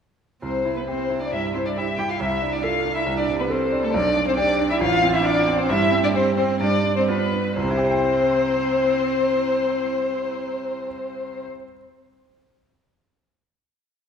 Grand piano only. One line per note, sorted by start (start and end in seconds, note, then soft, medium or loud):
0.42 1.30 C2 soft
0.65 1.01 E4 soft
0.88 1.24 G4 soft
1.10 1.46 E4 soft
1.32 1.68 G2 soft
1.55 1.90 E4 soft
1.77 2.12 G4 soft
1.98 2.20 E4 soft
2.20 3.04 C2 soft
2.42 2.77 D4 soft
2.64 2.98 A4 soft
2.85 3.19 D4 soft
3.06 3.91 C2 medium
3.28 3.64 C3 soft
3.50 3.85 A4 medium
3.72 3.94 D4 medium
3.94 4.78 B1 medium
4.16 4.50 D4 medium
4.37 4.72 G4 medium
4.59 4.81 D4 medium
4.81 5.67 A1 medium
5.03 5.38 C4 medium
5.25 5.61 F4 medium
5.47 5.70 C4 medium
5.70 6.58 G2 medium
5.92 6.28 C4 medium
6.14 6.51 G4 medium
6.37 6.61 C4 medium
6.60 7.53 G2 medium
6.84 7.22 D4 medium
7.08 7.47 F4 soft
7.32 7.57 D4 soft
7.56 11.43 C2 medium
7.63 11.49 C3 medium
7.70 11.56 E4 medium
7.78 11.64 G4 medium
7.84 11.71 C5 medium
7.91 11.77 G5 medium